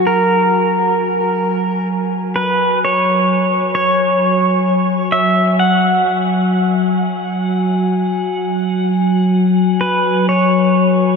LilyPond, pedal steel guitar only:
\new Staff \with { instrumentName = "Pedal steel guitar" } { \time 4/4 \key fis \major \tempo 4 = 65 ais'2 r8 b'8 cis''4 | cis''4. e''8 fis''2~ | fis''2~ fis''8 b'8 cis''4 | }